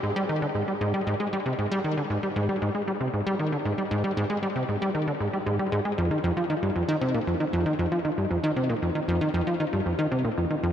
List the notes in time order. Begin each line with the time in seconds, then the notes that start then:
0.03 G#2
0.16 G3
0.29 D#3
0.42 D3
0.55 G#2
0.68 G3
0.81 G#2
0.94 G3
1.07 G#2
1.20 G#3
1.33 G3
1.46 C3
1.59 G#2
1.72 G3
1.84 D#3
1.97 D3
2.10 G#2
2.23 G3
2.36 G#2
2.49 G3
2.62 G#2
2.75 G#3
2.88 G3
3.01 C3
3.14 G#2
3.27 G3
3.39 D#3
3.52 D3
3.65 G#2
3.78 G3
3.91 G#2
4.04 G3
4.17 G#2
4.30 G#3
4.43 G3
4.56 C3
4.69 G#2
4.82 G3
4.95 D#3
5.08 D3
5.20 G#2
5.33 G3
5.46 G#2
5.59 G3
5.72 G#2
5.85 G#3
5.98 F2
6.11 D#3
6.24 F2
6.37 F3
6.50 D#3
6.63 G2
6.76 F2
6.88 D#3
7.02 C3
7.15 A#2
7.27 F2
7.40 D#3
7.53 F2
7.66 D#3
7.79 F2
7.92 F3
8.05 D#3
8.18 G2
8.31 F2
8.44 D#3
8.57 C3
8.69 A#2
8.82 F2
8.95 D#3
9.08 F2
9.21 D#3
9.34 F2
9.47 F3
9.60 D#3
9.73 G2
9.86 F2
9.99 D#3
10.12 C3
10.25 A#2
10.38 F2
10.51 D#3
10.63 F2